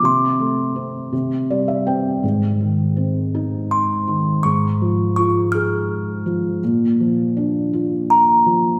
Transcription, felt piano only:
0.03 C3
0.40 A3
0.76 C4
1.13 C3
1.50 G3 D5
1.68 E5
1.87 C4 G5
2.23 G#2
2.61 D#3
2.97 C4
3.35 D#4
4.08 D#3
4.45 G#2
4.82 F3
5.18 F4
5.54 G#4
6.26 F3
6.64 A#2
7.00 F3
7.37 D4
7.73 F4
8.46 F3

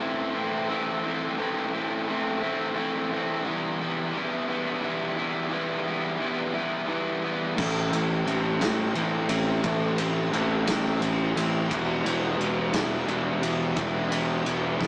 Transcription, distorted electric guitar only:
Already playing: A2
0.00 E3 A3 C4 E4
0.34 A3 C4 E4
0.68 E3 A3 C4 E4
1.03 A3 C4 E4
1.37 A2 E3 A3 C4 E4
1.72 A3 C4 E4
2.07 E3 A3 C4 E4
2.41 A3 C4 E4
2.75 E3 A3 C4 E4
3.10 A3 C4 E4
3.44 E3 G3 B3 E4
3.79 G3 B3 E4
4.13 E3 G3 B3 E4
4.48 G3 B3 E4
4.81 E3 G3 B3 E4
5.17 G3 B3 E4
5.49 E3 G3 B3 E4
5.84 G3 B3 E4
6.18 E3 G3 B3 E4
6.54 G3 B3 E4
6.88 E3 G3 B3 E4
7.21 G3 B3 E4
7.56 A2 E3 A3 C4 E4
7.90 A3 C4 E4
8.25 E3 A3 C4 E4
8.59 A3 C4 E4
8.94 E3 A3 C4 E4
9.28 A3 C4 E4
9.61 A2 E3 A3 C4 E4
9.97 A3 C4 E4
10.31 E3 A3 C4 E4
10.66 A3 C4 E4
10.99 E3 A3 C4 E4
11.34 A3 C4 E4
11.69 E3 G3 B3 E4
12.03 G3 B3 E4
12.38 E3 G3 B3 E4
12.72 G3 B3 E4
13.07 E3 G3 B3 E4
13.41 G3 B3 E4
13.76 E3 G3 B3 E4
14.10 G3 B3 E4
14.44 E3 G3 B3 E4
14.80 G3 B3 E4

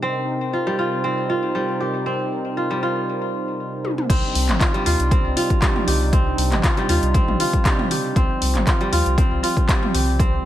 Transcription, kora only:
0.03 C4
0.53 F4
0.67 G3
0.79 F4
1.04 C4
1.30 F4
1.55 G3
1.81 G4
2.06 C4
2.57 F4
2.71 G3
2.83 F4
4.10 C4
4.61 F4
4.74 G3
4.86 F4
5.12 C4
5.37 F4
5.62 G3
5.88 G4
6.13 C4
6.64 F4
6.78 G3
6.90 F4
7.15 C4
7.40 F4
7.66 G3
7.91 G4
8.16 C4
8.67 F4
8.81 G3
8.92 F4
9.18 C4
9.43 F4
9.68 G3
9.94 G4
10.19 C4

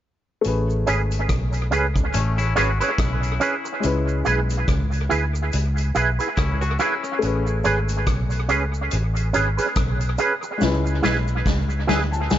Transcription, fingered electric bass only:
0.46 A1
0.88 G#1
1.30 B1
1.73 C#2
2.15 A1
2.57 G#1
2.99 B1
3.85 C#2
4.27 B1
4.69 C#2
5.11 D2
5.54 C#2
5.96 B1
6.38 C#2
7.23 A1
7.66 G#1
8.08 B1
8.51 C#2
8.93 A1
9.36 G#1
9.77 B1
10.62 C#2
11.05 B1
11.47 C#2
11.89 D2
12.32 C#2

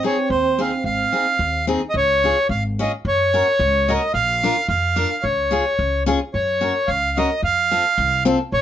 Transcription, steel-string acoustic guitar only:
0.03 C4 D#4 G#4
0.58 C4 D#4 G#4
1.12 C4 D#4 G#4
1.67 C4 D#4 G#4
2.24 C#4 F4 G#4
2.79 C#4 F4 G#4
3.34 C#4 F#4 A#4
3.88 C#4 F#4 A#4
4.43 D4 F4 A#4
4.96 D4 F4 A#4
5.51 C#4 F4 G#4
6.06 C#4 F4 G#4
6.61 C#4 F#4 A#4
7.17 C#4 F#4 A#4
7.71 C4 F4 A4
8.25 C4 F4 A4

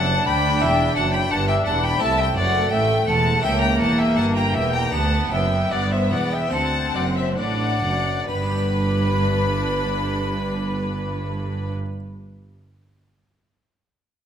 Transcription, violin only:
Already playing: F#5
0.27 G5
0.62 E5
0.96 F#5
1.13 G5
1.31 F#5
1.48 E5
1.66 F#5
1.83 G5
2.00 E5
2.18 E5
2.35 D5
2.71 E5
3.07 F#5
3.43 E5
3.61 G5
3.79 F#5
3.98 E5
4.16 F#5
4.35 G5
4.54 E5
4.73 G5
4.93 F#5
5.32 E5
5.71 D5
5.92 C5
6.12 D5
6.33 E5
6.53 F#5
6.95 D5
7.18 C5
7.39 D5
8.29 B4

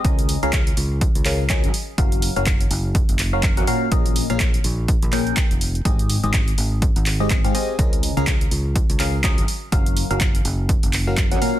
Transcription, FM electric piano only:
0.05 C#3 C#4 G#4 A#4 D#5
0.43 C#3 C#4 G#4 A#4 F5
1.26 C#3 C#4 G#4 A#4 F5
1.50 F#3 C#4 G#4 A#4 D#5
1.98 F#3 C#4 F#4 A#4 F5
2.36 F#3 C#4 F#4 A#4 F5
3.33 F#3 C#4 F#4 A#4 F5
3.57 F#3 C#4 F#4 A#4 F#5
3.67 A#2 C#4 F#4 A#4 F5
3.92 A#2 C#4 G#4 A#4 D#5
4.30 A#2 C#4 G#4 A#4 F5
5.13 A#2 C#4 G#4 A#4 G5
5.85 G#2 C4 G4 G#4 D#5
6.23 G#2 C4 G4 G#4 D#5
7.20 G#2 C4 G4 G#4 D#5
7.44 G#2 C4 G4 G#4 F5
7.55 C4 G4 G#4 D#5
7.79 C#3 C#4 G#4 A#4 D#5
8.17 C#3 C#4 G#4 A#4 F5
9.00 C#3 C#4 G#4 A#4 F5
9.24 F#3 C#4 G#4 A#4 D#5
9.72 F#3 C#4 F#4 A#4 F5
10.11 F#3 C#4 F#4 A#4 F5
11.07 F#3 C#4 F#4 A#4 F5
11.32 F#3 C#4 F#4 A#4 F#5
11.42 A#2 C#4 F#4 A#4 F5

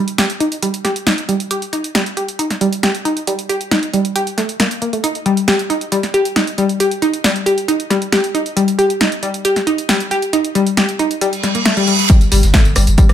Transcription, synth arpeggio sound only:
0.18 G4
0.40 D#4
0.62 G3
0.84 G4
1.07 D#4
1.29 G3
1.51 G4
1.73 D#4
1.95 G3
2.17 G4
2.39 D#4
2.61 G3
2.83 G4
3.05 D#4
3.27 G3
3.49 G4
3.71 D#4
3.93 G3
4.16 G4
4.38 A3
4.60 A#3
4.82 A#3
4.93 A3
5.04 D#4
5.26 G3
5.48 G4
5.70 D#4
5.92 G3
6.14 G4
6.36 D#4
6.58 G3
6.80 G4
7.02 D#4
7.24 G3
7.46 G4
7.68 D#4
7.90 G3
8.12 G4
8.35 D#4
8.57 G3
8.79 G4
9.01 D#4
9.23 G3
9.45 G4
9.67 D#4
9.89 G3
10.11 G4
10.33 D#4
10.55 G3
10.77 G4
10.99 D#4
11.21 G3
11.43 G3
11.55 A#3
11.66 A3
11.77 G3
11.88 G3
12.10 G3
12.32 G3
12.54 A3
12.76 G3
12.98 G3

